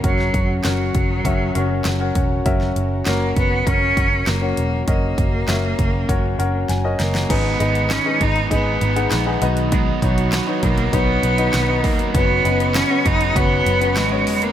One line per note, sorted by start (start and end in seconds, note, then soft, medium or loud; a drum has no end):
0.00 7.26 C#3 medium
0.00 7.26 F#3 medium
0.00 0.04 C#4 medium
0.00 0.58 C#4 medium
0.00 0.04 F#4 medium
0.00 7.26 F#4 medium
0.00 0.58 F#4 medium
0.00 0.04 A#4 medium
0.00 7.26 A#4 medium
0.00 0.58 A#4 medium
0.00 0.04 C#5 medium
0.00 4.88 D#5 medium
0.00 1.25 E5 medium
0.00 kick medium
0.00 closed hi-hat medium
0.04 0.29 F#1 medium
0.04 0.60 F#3 medium
0.04 0.58 C#5 medium
0.19 snare soft
0.34 0.59 F#1 medium
0.34 kick medium
0.34 closed hi-hat medium
0.64 0.90 F#1 medium
0.64 2.12 F#3 medium
0.64 1.19 C#4 medium
0.64 1.19 F#4 medium
0.64 1.19 A#4 medium
0.64 1.19 C#5 medium
0.64 snare medium
0.64 clap medium
0.64 closed hi-hat medium
0.95 1.20 F#1 medium
0.95 kick medium
0.95 closed hi-hat medium
1.25 1.50 F#1 medium
1.25 1.52 C#4 medium
1.25 1.52 F#4 medium
1.25 1.52 A#4 medium
1.25 1.52 E5 medium
1.25 kick medium
1.25 closed hi-hat medium
1.55 1.80 F#1 medium
1.55 1.96 C#4 medium
1.55 1.96 F#4 medium
1.55 1.96 A#4 medium
1.55 1.96 C#5 medium
1.55 closed hi-hat medium
1.84 2.10 F#1 medium
1.84 snare medium
1.84 clap medium
1.84 closed hi-hat medium
2.00 2.41 C#4 medium
2.00 2.41 F#4 medium
2.00 2.41 A#4 medium
2.00 2.41 C#5 medium
2.15 2.40 E1 medium
2.15 kick medium
2.15 closed hi-hat medium
2.46 2.71 F#1 medium
2.46 3.00 C#4 medium
2.46 3.00 F#4 medium
2.46 3.00 A#4 medium
2.46 3.00 E5 medium
2.46 kick medium
2.46 closed hi-hat medium
2.61 snare soft
2.76 3.01 F#1 medium
2.76 closed hi-hat medium
3.06 3.31 F#1 medium
3.06 3.35 A#3 medium
3.06 3.61 C#4 medium
3.06 3.61 F#4 medium
3.06 3.61 A#4 medium
3.06 3.61 C#5 medium
3.06 snare medium
3.06 clap medium
3.06 closed hi-hat medium
3.36 3.61 F#1 medium
3.36 3.69 B3 medium
3.36 kick medium
3.36 closed hi-hat medium
3.66 3.92 F#1 medium
3.66 3.94 C#4 medium
3.66 4.29 C#4 medium
3.66 3.94 F#4 medium
3.66 3.94 A#4 medium
3.66 3.94 C#5 medium
3.66 kick medium
3.66 closed hi-hat medium
3.97 4.22 F#1 medium
3.97 4.38 C#4 medium
3.97 4.38 F#4 medium
3.97 4.38 A#4 medium
3.97 4.38 C#5 medium
3.97 kick medium
3.97 closed hi-hat medium
4.27 4.52 F#1 medium
4.27 4.87 A#3 medium
4.27 snare medium
4.27 clap medium
4.27 closed hi-hat medium
4.42 4.83 C#4 medium
4.42 4.83 F#4 medium
4.42 4.83 A#4 medium
4.42 4.83 C#5 medium
4.57 4.82 E1 medium
4.57 closed hi-hat medium
4.87 5.13 F#1 medium
4.87 6.66 A#3 medium
4.87 5.42 C#4 medium
4.87 5.42 F#4 medium
4.87 5.42 A#4 medium
4.87 5.42 D#5 medium
4.87 kick medium
4.87 closed hi-hat medium
5.18 5.43 F#1 medium
5.18 kick medium
5.18 closed hi-hat medium
5.48 5.73 F#1 medium
5.48 6.03 C#4 medium
5.48 6.03 F#4 medium
5.48 6.03 A#4 medium
5.48 6.03 E5 medium
5.48 snare medium
5.48 clap medium
5.48 closed hi-hat medium
5.79 6.04 F#1 medium
5.79 kick medium
5.79 closed hi-hat medium
6.09 6.34 F#1 medium
6.09 6.36 C#4 medium
6.09 6.36 F#4 medium
6.09 6.36 A#4 medium
6.09 6.36 C#5 medium
6.09 kick medium
6.09 closed hi-hat medium
6.39 6.64 F#1 medium
6.39 6.80 C#4 medium
6.39 6.80 F#4 medium
6.39 6.80 A#4 medium
6.39 6.80 C#5 medium
6.39 6.67 F#5 medium
6.39 closed hi-hat medium
6.69 6.94 F#1 medium
6.69 6.97 G#5 medium
6.69 snare soft
6.69 closed hi-hat medium
6.84 7.25 C#4 medium
6.84 7.25 F#4 medium
6.84 7.25 A#4 medium
6.84 7.25 D#5 medium
6.99 7.25 F#1 medium
6.99 7.31 A#3 medium
6.99 7.28 A#5 medium
6.99 snare medium
6.99 closed hi-hat medium
7.15 snare medium
7.29 7.55 G#1 medium
7.29 7.60 G#2 medium
7.29 8.17 G#2 medium
7.29 12.10 D#3 medium
7.29 7.60 D#3 medium
7.29 9.40 G#3 medium
7.29 7.60 G#3 medium
7.29 7.92 B3 medium
7.29 7.60 B3 medium
7.29 14.52 D#4 medium
7.29 7.57 D#4 medium
7.29 7.59 D#4 medium
7.29 9.40 G#4 medium
7.29 7.57 G#4 medium
7.29 7.57 B4 medium
7.29 7.58 B4 medium
7.29 7.57 D#5 medium
7.29 kick medium
7.29 closed hi-hat medium
7.29 crash medium
7.59 7.98 G#1 medium
7.59 7.88 G#3 soft
7.59 7.90 B3 soft
7.59 8.01 D#4 medium
7.59 7.91 D#4 soft
7.59 8.01 G#4 medium
7.59 7.90 B4 medium
7.59 8.01 B4 medium
7.59 8.01 D#5 medium
7.59 closed hi-hat medium
7.75 closed hi-hat soft
7.89 8.20 G#3 medium
7.89 8.21 B3 medium
7.89 8.23 C#4 medium
7.89 8.20 D#4 medium
7.89 8.18 B4 medium
7.89 snare medium
7.89 clap medium
7.89 closed hi-hat medium
8.05 8.46 D#4 medium
8.05 8.46 G#4 medium
8.05 8.46 B4 medium
8.05 8.46 D#5 medium
8.20 8.46 G#1 medium
8.20 8.50 G#3 soft
8.20 8.51 B3 soft
8.20 8.51 D#4 medium
8.20 8.51 D#4 loud
8.20 8.50 B4 soft
8.20 kick medium
8.20 closed hi-hat medium
8.36 closed hi-hat soft
8.50 8.76 G#1 medium
8.50 8.81 G#2 medium
8.50 8.81 D#3 medium
8.50 8.82 G#3 medium
8.50 8.81 B3 medium
8.50 9.39 B3 medium
8.50 8.92 D#4 medium
8.50 8.80 D#4 medium
8.50 8.92 G#4 medium
8.50 8.92 B4 medium
8.50 8.79 B4 medium
8.50 8.92 D#5 medium
8.50 kick medium
8.50 closed hi-hat medium
8.80 9.06 G#1 medium
8.80 9.09 G#3 soft
8.80 9.10 B3 medium
8.80 9.11 D#4 soft
8.80 9.11 B4 medium
8.80 closed hi-hat medium
8.96 9.23 D#4 medium
8.96 9.23 G#4 medium
8.96 9.24 B4 medium
8.96 9.24 F#5 medium
8.96 closed hi-hat medium
9.10 9.36 A#1 medium
9.10 9.41 G#3 medium
9.10 9.42 B3 medium
9.10 9.42 D#4 medium
9.10 9.40 B4 medium
9.10 snare medium
9.10 clap medium
9.10 closed hi-hat medium
9.26 9.40 D#4 medium
9.26 9.42 G#4 medium
9.26 9.40 B4 medium
9.26 9.42 F#5 medium
9.41 9.91 B1 medium
9.41 10.29 B2 medium
9.41 14.52 F#3 medium
9.41 9.71 B3 soft
9.41 9.96 D#4 medium
9.41 9.72 D#4 medium
9.41 14.52 F#4 medium
9.41 9.96 F#4 medium
9.41 9.72 B4 medium
9.41 9.96 B4 medium
9.41 9.96 D#5 loud
9.41 closed hi-hat medium
9.57 closed hi-hat soft
9.71 10.02 B2 medium
9.71 10.02 F#3 medium
9.71 9.86 G#3 medium
9.71 10.02 B3 medium
9.71 10.02 D#4 medium
9.71 10.00 B4 medium
9.71 kick loud
9.71 closed hi-hat medium
10.01 10.40 B1 medium
10.01 10.65 F#3 medium
10.01 10.32 B3 soft
10.01 10.43 D#4 medium
10.01 10.33 D#4 medium
10.01 10.43 F#4 medium
10.01 10.32 B4 medium
10.01 10.43 B4 medium
10.01 10.43 C#5 medium
10.01 kick medium
10.01 closed hi-hat medium
10.18 closed hi-hat soft
10.32 10.62 F#3 medium
10.32 10.63 B3 medium
10.32 10.63 D#4 medium
10.32 10.61 B4 medium
10.32 snare medium
10.32 clap medium
10.32 closed hi-hat medium
10.47 10.88 D#4 medium
10.47 10.88 F#4 medium
10.47 10.89 B4 medium
10.47 10.89 C#5 medium
10.62 10.88 B1 medium
10.62 10.95 A#3 medium
10.62 10.92 B3 soft
10.62 10.93 D#4 soft
10.62 10.93 B4 medium
10.62 kick medium
10.62 closed hi-hat medium
10.78 closed hi-hat soft
10.92 11.18 B1 medium
10.92 11.23 B2 medium
10.92 11.24 F#3 medium
10.92 11.85 B3 loud
10.92 11.24 B3 medium
10.92 11.34 D#4 medium
10.92 11.23 D#4 medium
10.92 11.34 F#4 medium
10.92 11.34 B4 medium
10.92 11.21 B4 medium
10.92 11.34 C#5 medium
10.92 kick medium
10.92 closed hi-hat medium
11.22 11.48 B1 medium
11.22 11.53 B3 soft
11.22 11.54 D#4 medium
11.22 11.53 B4 soft
11.22 closed hi-hat medium
11.38 11.66 D#4 medium
11.38 11.66 F#4 medium
11.38 11.66 B4 medium
11.38 11.66 D#5 medium
11.38 closed hi-hat medium
11.53 11.84 B1 medium
11.53 11.84 F#3 medium
11.53 11.84 B3 medium
11.53 11.83 D#4 medium
11.53 11.82 B4 medium
11.53 snare medium
11.53 clap medium
11.53 closed hi-hat medium
11.68 12.10 D#4 medium
11.68 12.10 F#4 medium
11.68 12.10 B4 medium
11.68 12.10 D#5 medium
11.83 12.09 E1 medium
11.83 12.14 A#3 medium
11.83 12.13 B3 soft
11.83 12.15 D#4 medium
11.83 12.14 B4 medium
11.83 kick medium
11.83 open hi-hat medium
11.99 closed hi-hat soft
12.13 12.39 F#1 loud
12.13 12.44 F#2 medium
12.13 12.45 C#3 medium
12.13 14.52 C#3 medium
12.13 12.45 F#3 medium
12.13 12.77 B3 loud
12.13 12.45 B3 medium
12.13 12.41 C#4 medium
12.13 12.44 C#4 medium
12.13 12.41 F#4 medium
12.13 12.42 B4 medium
12.13 12.43 B4 medium
12.13 12.42 C#5 medium
12.13 kick loud
12.13 closed hi-hat medium
12.44 12.82 F#1 medium
12.44 12.73 F#3 soft
12.44 12.74 B3 soft
12.44 12.86 C#4 medium
12.44 12.75 C#4 medium
12.44 12.86 F#4 medium
12.44 12.75 B4 medium
12.44 12.86 B4 medium
12.44 12.86 D#5 medium
12.44 closed hi-hat medium
12.60 closed hi-hat soft
12.74 13.05 F#3 medium
12.74 13.06 B3 medium
12.74 13.07 C#4 medium
12.74 13.05 C#4 medium
12.74 13.04 B4 medium
12.74 snare loud
12.74 clap medium
12.74 closed hi-hat medium
12.90 13.31 C#4 medium
12.90 13.31 F#4 medium
12.90 13.31 B4 medium
12.90 13.31 C#5 medium
13.05 13.31 F#1 medium
13.05 13.35 F#3 soft
13.05 13.36 B3 soft
13.05 13.36 C#4 medium
13.05 13.38 D#4 loud
13.05 13.35 B4 medium
13.05 kick medium
13.05 closed hi-hat medium
13.21 closed hi-hat soft
13.35 13.61 F#1 loud
13.35 13.66 F#2 medium
13.35 13.66 C#3 medium
13.35 13.66 F#3 medium
13.35 13.99 B3 loud
13.35 13.66 B3 loud
13.35 13.77 C#4 medium
13.35 13.65 C#4 medium
13.35 13.77 F#4 medium
13.35 13.77 B4 medium
13.35 13.64 B4 medium
13.35 13.77 C#5 medium
13.35 kick medium
13.35 closed hi-hat medium
13.65 13.97 F#1 loud
13.65 13.94 F#3 soft
13.65 13.96 B3 medium
13.65 13.96 C#4 medium
13.65 13.96 B4 medium
13.65 closed hi-hat medium
13.81 14.08 C#4 medium
13.81 14.08 F#4 medium
13.81 14.08 B4 medium
13.81 14.09 C#5 medium
13.81 closed hi-hat soft
13.95 14.27 G#1 medium
13.95 14.26 F#3 medium
13.95 14.44 G#3 medium
13.95 14.27 B3 medium
13.95 14.26 C#4 medium
13.95 14.25 B4 medium
13.95 snare medium
13.95 clap medium
13.95 closed hi-hat medium
14.11 14.52 C#4 medium
14.11 14.52 F#4 medium
14.11 14.52 B4 medium
14.11 14.52 C#5 medium
14.26 14.52 E1 medium
14.26 14.52 F#3 soft
14.26 14.52 B3 medium
14.26 14.52 C#4 medium
14.26 14.52 B4 medium
14.26 open hi-hat medium
14.42 14.52 A#3 medium
14.42 closed hi-hat soft